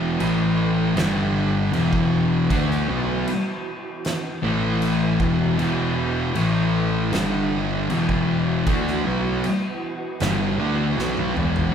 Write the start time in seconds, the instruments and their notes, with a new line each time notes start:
Already playing: picked electric bass E1, distorted electric guitar E2 B2 E3, string machine E3 B3 F#4
0.20 picked electric bass A1, distorted electric guitar A2 E3 A3, string machine A3 E4 B4, crash
0.96 picked electric bass G1, distorted electric guitar G2 D3 G3, string machine G3 D4 A4, snare, crash
1.72 picked electric bass E1, distorted electric guitar E2 B2 E3, string machine E3 B3 F#4, crash
1.93 kick
2.50 picked electric bass D2, distorted electric guitar D3 A3 D4, kick, crash
2.71 snare
2.89 picked electric bass B1, distorted electric guitar B2 F#3 B3
3.28 crash
4.05 snare, crash
4.42 picked electric bass A1, distorted electric guitar A2 E3 A3, string machine A3 E4 B4
4.82 crash
5.19 picked electric bass E1, distorted electric guitar E2 B2 E3, string machine E3 B3 F#4, kick
5.57 picked electric bass E1, distorted electric guitar E2 B2 E3, crash
6.35 picked electric bass A1, distorted electric guitar A2 E3 A3, string machine A3 E4 B4, crash
7.11 distorted electric guitar G2 D3 G3, string machine G3 D4, snare, crash
7.15 picked electric bass G1, string machine A4
7.89 picked electric bass E1, distorted electric guitar E2 B2 E3, string machine E3 B3 F#4, crash
8.09 kick
8.66 picked electric bass D2, distorted electric guitar D3 A3 D4, kick, crash
8.88 snare
9.05 picked electric bass B1, distorted electric guitar B2 F#3 B3
9.44 crash
10.20 picked electric bass G1, distorted electric guitar G2 D3 G3, snare, crash
10.58 picked electric bass D2, distorted electric guitar D3 A3 D4
10.97 picked electric bass B1, distorted electric guitar B2 F#3 B3, snare
11.17 high tom
11.34 picked electric bass E1, distorted electric guitar E2 B2 E3, mid tom
11.56 floor tom